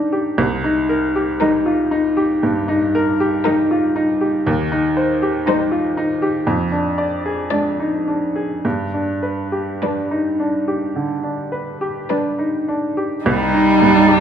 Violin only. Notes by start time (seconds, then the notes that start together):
Already playing: A#4
1.40 A#4
3.44 A#4
5.48 C5
7.51 D5
9.82 B4
12.09 B4
13.26 D#4